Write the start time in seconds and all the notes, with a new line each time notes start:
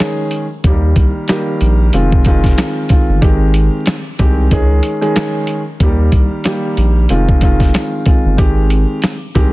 Already playing: D#3 G#3 C#4 G#4
0.00 snare, closed hi-hat
0.31 closed hi-hat
0.64 D#2 D#3 G3 A#3 G4, kick, closed hi-hat
0.96 C2, kick, closed hi-hat
1.28 D#3 G3 A#3 G4, snare, closed hi-hat
1.61 A#1, closed hi-hat
1.93 F1 D#3 G#3 C4 F4, closed hi-hat
2.12 kick
2.25 D#3 G#3 C4 F4, kick, closed hi-hat
2.44 kick, snare, closed hi-hat
2.58 snare, closed hi-hat
2.89 D#3 G#3 C4 F4, kick, closed hi-hat
3.09 G1
3.21 G#1 D#3 G#3 C4 G4, kick, closed hi-hat
3.54 closed hi-hat
3.86 snare, closed hi-hat
4.19 C2 D#3 G#3 C4 G4, kick, closed hi-hat
4.51 C#2 D#3 G#3 C#4 G#4, kick, closed hi-hat
4.83 closed hi-hat
5.01 D#3 G#3 C#4 G#4, closed hi-hat
5.16 snare, closed hi-hat
5.47 closed hi-hat
5.80 D#2 D#3 G3 A#3 G4, kick, closed hi-hat
6.12 C2, kick, closed hi-hat
6.44 D#3 G3 A#3 G4, snare, closed hi-hat
6.77 A#1, closed hi-hat
7.09 F1 D#3 G#3 C4 F4, closed hi-hat
7.29 kick
7.41 D#3 G#3 C4 F4, kick, closed hi-hat
7.60 kick, snare, closed hi-hat
7.74 snare, closed hi-hat
8.05 D#3 G#3 C4 F4, kick, closed hi-hat
8.25 G1
8.37 G#1 D#3 G#3 C4 G4, kick, closed hi-hat
8.70 closed hi-hat
9.02 snare, closed hi-hat
9.35 C2 D#3 G#3 C4 G4, kick, closed hi-hat